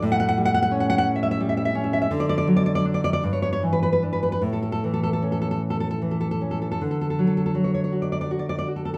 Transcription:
\new Staff \with { instrumentName = "Nylon-string guitar" } { \time 6/8 \key d \major \tempo 4. = 54 << { r32 fis''32 fis''32 fis''32 r32 fis''32 fis''32 fis''32 r32 fis''32 fis''32 fis''32 r32 e''32 e''32 e''32 r32 e''32 e''32 e''32 r32 e''32 e''32 e''32 | r32 d''32 d''32 d''32 r32 d''32 d''32 d''32 r32 d''32 d''32 d''32 r32 cis''32 cis''32 cis''32 r32 b'32 b'32 b'32 r32 b'32 b'32 b'32 | r32 a'32 a'32 a'32 r32 a'32 a'32 a'32 r32 a'32 a'32 a'32 r32 a'32 a'32 a'32 r32 a'32 a'32 a'32 r32 a'32 a'32 a'32 | r32 a'32 a'32 a'32 r32 a'32 a'32 a'32 r32 cis''32 cis''32 cis''32 r32 d''32 d''32 d''32 r32 d''32 d''32 d''32 r32 a'32 a'32 a'32 | } \\ { a,8 g8 cis'4 g8 cis'8 | d8 fis8 d'8 g,8 e8 d'8 | a,8 e8 cis'4 e8 cis'8 | d8 fis8 fis8 fis'8 fis'8 fis'8 | } >> }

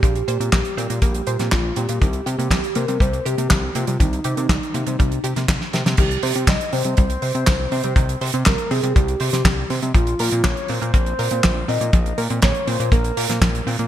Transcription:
<<
  \new Staff \with { instrumentName = "Soft synth lead" } { \time 4/4 \key c \phrygian \tempo 4 = 121 g'2. f'8 g'8~ | g'4. bes'8 c''8 g'4 f'8 | ees'2.~ ees'8 r8 | g'8 g'8 ees''8 c''2 c''8~ |
c''8 r8 bes'8 aes'8 g'4. r8 | f'8 f'8 des''8 c''2 ees''8~ | ees''8 r8 des''8 c''8 bes'4. r8 | }
  \new Staff \with { instrumentName = "Synth arpeggio sound" } { \time 4/4 \key c \phrygian f16 r16 c''16 c'16 bes16 r16 c'16 bes16 bes16 r16 c''16 c'16 f16 r16 c'16 bes16 | ees16 r16 g'16 bes16 g16 r16 bes16 g16 g16 r16 g'16 bes16 ees16 r16 bes16 g16 | ees16 r16 g'16 bes16 g16 r16 bes16 g16 g16 r16 g'16 bes16 ees16 r16 bes16 g16 | ees16 r16 c''16 c'16 g16 r16 c'16 g16 g16 r16 c''16 c'16 ees16 r16 c'16 g16 |
ees16 r16 c''16 c'16 g16 r16 c'16 g16 g16 r16 c''16 c'16 ees16 r16 c'16 g16 | f16 r16 bes'16 c'16 bes16 r16 c'16 bes16 bes16 r16 bes'16 c'16 f16 r16 c'16 bes16 | f16 r16 bes'16 c'16 bes16 r16 c'16 bes16 bes16 r16 bes'16 c'16 f16 r16 c'16 bes16 | }
  \new Staff \with { instrumentName = "Analog synth bass" } { \clef bass \time 4/4 \key c \phrygian bes,,8 bes,16 bes,16 bes,,16 r16 bes,16 bes,16 bes,,8 bes,16 bes,16 bes,,8 bes,16 bes,16 | c,8 c16 c16 c,16 r16 c16 c16 c,8 c16 c16 c,8 c16 c16 | c,8 c16 c16 c,16 r16 c16 c16 c,8 c16 c16 c,16 r16 c16 c16 | c,8 c16 c16 c,16 r16 c16 c16 c,8 c16 c16 c,8 c16 c16 |
c,8 c16 c16 c,16 r16 c16 c16 c,8 c16 c16 c,8 c16 c16 | bes,,8 bes,16 bes,16 bes,,16 r16 bes,16 bes,16 bes,,8 bes,16 bes,16 bes,,8 bes,16 bes,16 | bes,,8 bes,16 bes,16 bes,,16 r16 bes,16 bes,16 bes,,8 bes,16 bes,16 bes,,8 bes,16 bes,16 | }
  \new DrumStaff \with { instrumentName = "Drums" } \drummode { \time 4/4 <hh bd>16 hh16 hh16 hh16 <hc hh bd sn>16 hh16 hh16 hh16 <hh bd>16 hh16 hh16 <hh sn>16 <hc hh bd sn>8 hh16 hh16 | <hh bd>16 hh16 hh16 hh16 <hc hh bd sn>16 hh16 hh16 hh16 <hh bd>16 hh16 hh16 hh16 <hc hh bd sn>8 hh16 hh16 | <hh bd>16 hh16 hh16 hh16 <hc hh bd sn>16 hh16 hh16 hh16 <hh bd>16 hh16 hh16 <hh sn>16 <hc hh bd sn>16 sn16 <hh sn>16 <hh sn>16 | <cymc hh bd>16 hh16 hho16 hh16 <hc hh bd sn>16 hh16 hho16 hh16 <hh bd>16 hh16 hho16 hh16 <hc hh bd sn>8 hho16 hh16 |
<hh bd>16 hh16 hho16 hh16 <hc hh bd sn>16 hh16 hho16 hh16 <hh bd>16 hh16 hho16 <hh sn>16 <hc hh bd sn>8 hho16 hh16 | <hh bd>16 hh16 hho16 hh16 <hc hh bd sn>16 hh16 hho16 hh16 <hh bd>16 hh16 hho16 hh16 <hc hh bd sn>8 hho16 hh16 | <hh bd>16 hh16 hho16 hh16 <hc hh bd sn>16 hh16 hho16 hh16 <hh bd>16 hh16 hho16 <hh sn>16 <hc hh bd sn>16 hh16 hho16 hh16 | }
>>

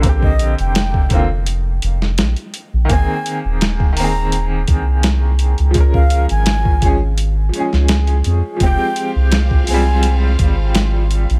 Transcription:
<<
  \new Staff \with { instrumentName = "Flute" } { \time 4/4 \key f \minor \tempo 4 = 84 r16 ees''8 g''4 r2 r16 | aes''8. r8. bes''8. r4. r16 | r16 f''8 aes''4 r2 r16 | g''8. r8. aes''8. r4. r16 | }
  \new Staff \with { instrumentName = "Violin section" } { \time 4/4 \key f \minor r1 | r1 | r1 | <c' f' f''>1 | }
  \new Staff \with { instrumentName = "Upright piano" } { \time 4/4 \key f \minor <d bes c' g'>4. <d bes c' f'>8 r2 | <ees bes c' aes'>4. <ees bes c' aes'>2~ <ees bes c' aes'>8 | <f aes des' bes'>4. <f aes des' aes'>8 r8 <f aes des' aes'>4. | <f aes c' g'>4. <f g aes c'>2~ <f g aes c'>8 | }
  \new Staff \with { instrumentName = "Sub bass" } { \clef bass \time 4/4 \key f \minor bes,,8. f,,4.~ f,,16 f,,8 bes,,16 r8 bes,,16 | aes,,16 r8 ees,,4.~ ees,,16 c,4~ c,16 des,16~ | des,8. aes,,4.~ aes,,16 r16 des,8. f,16 r16 | f,,16 r8 c,4.~ c,16 aes,,4~ aes,,16 bes,,16 | }
  \new DrumStaff \with { instrumentName = "Drums" } \drummode { \time 4/4 <hh bd>16 bd16 hh16 hh16 <hh sn>16 bd16 <hh bd>8 hh8 hh16 sn16 <hh sn>16 hh16 hh8 | <hh bd>8 hh8 <hh sn>16 bd16 hho8 hh8 <hh bd>8 <hh sn>8 hh16 hh16 | <hh bd>16 bd16 hh16 hh16 <hh sn>16 bd16 <hh bd>8 hh8 hh16 sn16 <hh sn>16 hh16 hh8 | <hh bd>8 hh8 <hh sn>16 bd16 hho8 hh8 <hh bd>8 <hh sn>8 hh16 hh16 | }
>>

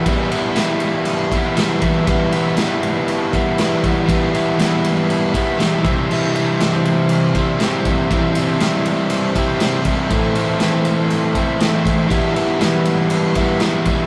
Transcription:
<<
  \new Staff \with { instrumentName = "Transistor combo organ" } { \time 4/4 \key e \minor \tempo 4 = 120 << { r1 | r1 | r2 r8 b''8 g''8 e''8 | r1 |
r1 | r1 | r1 | } \\ { <e' g' b'>1 | <e' g' b'>1~ | <e' g' b'>2.~ <e' g' b'>8 <e' g' c''>8~ | <e' g' c''>1~ |
<e' g' c''>2.~ <e' g' c''>8 r8 | <e' a' c''>1 | <e' g' b'>1 | } >> }
  \new Staff \with { instrumentName = "Overdriven electric guitar" } { \time 4/4 \key e \minor <e g b e'>8 <g b e'>8 <e g b e'>4. <g b e'>8 <e g b e'>8 <g b e'>8 | <e g b e'>8 <g b e'>8 <e g b e'>4. <g b e'>8 <e g b e'>8 <g b e'>8 | <e g b e'>8 <g b e'>8 <e g b e'>4. <g b e'>8 <e g b e'>8 <c e g c' e'>8 | <c e g c' e'>8 <g c' e'>8 <e g c' e'>4. <g c' e'>8 <c e g c' e'>8 <g c' e'>8 |
<c e g c' e'>8 <g c' e'>8 <e g c' e'>4. <g c' e'>8 <c e g c' e'>8 <g c' e'>8 | <a, e a c' e'>8 <a c' e'>8 <e a c' e'>4. <a c' e'>8 <a, e a c' e'>8 <a c' e'>8 | <e g b e'>8 <g b e'>8 <e g b e'>4. <g b e'>8 <e g b e'>8 <g b e'>8 | }
  \new DrumStaff \with { instrumentName = "Drums" } \drummode { \time 4/4 <bd cymr>8 cymr8 <cymr sn>8 cymr8 cymr8 <bd cymr>8 <cymr sn>8 <bd cymr>8 | <bd cymr>8 cymr8 <cymr sn>8 cymr8 cymr8 <bd cymr>8 <cymr sn>8 <bd cymr>8 | <bd cymr>8 cymr8 <cymr sn>8 cymr8 cymr8 <bd cymr>8 <cymr sn>8 <bd cymr>8 | cymc8 cymr8 <cymr sn>8 cymr8 cymr8 <bd cymr>8 <cymr sn>8 <bd cymr>8 |
<bd cymr>8 cymr8 <cymr sn>8 cymr8 cymr8 <bd cymr>8 <cymr sn>8 <bd cymr>8 | <bd cymr>8 cymr8 <cymr sn>8 cymr8 cymr8 <bd cymr>8 <cymr sn>8 <bd cymr>8 | <bd cymr>8 cymr8 <cymr sn>8 cymr8 cymr8 <bd cymr>8 <cymr sn>8 <bd cymr>8 | }
>>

